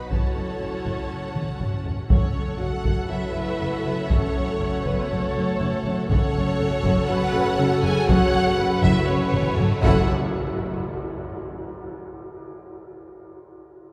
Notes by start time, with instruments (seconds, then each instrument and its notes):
Already playing: french horn section F#3, string section F#4 B4, viola section B4, violin section B4 B5
0.10 double bass section F#1, cello section F#2, trombone section A2, string section C#4 C#5 F#5, french horn section C#4, violin section A4 A5, viola section C#5, taiko
0.36 double bass section F#1, cello section F#2
0.61 double bass section F#1, cello section F#2
0.85 double bass section F#1, cello section F#2, taiko
1.11 double bass section F#1, cello section F#2
1.36 double bass section F#1, cello section F#2, taiko mid
1.60 double bass section F#1, cello section F#2, taiko low-mid
1.85 taiko low
2.09 double bass section F#1, cello section F#2, trombone section F#3 A3, french horn section C#4, string section C#4 A4 C#5 F#5, viola section A4, violin section C#5, taiko
2.35 double bass section F#1, cello section F#2
2.58 double bass section F#1, cello section F#2, french horn section F#4, violin section F#5
2.84 double bass section F#1, cello section F#2, taiko
3.08 double bass section F#1, cello section F#2, french horn section E4, viola section B4, violin section E5
3.35 double bass section F#1, cello section F#2
3.60 double bass section F#1, cello section F#2
3.85 double bass section F#1, cello section F#2
4.09 double bass section F#1, cello section F#2, french horn section C#4, viola section A4, violin section C#5, taiko
4.35 double bass section F#1, cello section F#2
4.60 double bass section F#1, cello section F#2, viola section C#5
4.84 double bass section F#1, cello section F#2, french horn section B3, violin section B4, taiko
5.10 double bass section F#1, cello section F#2, french horn section A3, violin section A4
5.36 double bass section F#1, cello section F#2
5.60 double bass section F#1, cello section F#2
5.85 double bass section F#1, cello section F#2, taiko mid
6.09 double bass section F#1, cello section F#2, trombone section F#3 A3, string section C#4 A4 C#5 F#5, french horn section C#4, viola section A4, violin section C#5, taiko
6.35 double bass section F#1, cello section F#2
6.60 double bass section F#1, cello section F#2
6.84 double bass section F#1, cello section F#2, taiko
7.09 double bass section F#1, cello section F#2, french horn section F#4, viola section B4, violin section F#5
7.34 double bass section F#1, cello section F#2
7.59 double bass section F#1, cello section F#2, viola section A4
7.82 double bass section F#1, cello section F#2, french horn section G#4, violin section G#5, taiko mid
8.07 double bass section F#1, cello section F#2, french horn section F#4, viola section C#5, violin section F#5, taiko
8.33 double bass section F#1, cello section F#2
8.58 double bass section F#1, cello section F#2, viola section B4
8.83 double bass section F#1, cello section F#2, french horn section E4, violin section E5, taiko
9.07 double bass section F#1, cello section F#2, french horn section C#4, violin section C#5
9.33 double bass section F#1, cello section F#2, taiko mid
9.57 double bass section F#1, cello section F#2, viola section A4, taiko low-mid
9.82 double bass section F#1, cello section F#2, trombone section E3 A3, string section C#4 A4 C#5 E5, viola section E4 A4, french horn section F#4, violin section F#5, taiko, tam-tam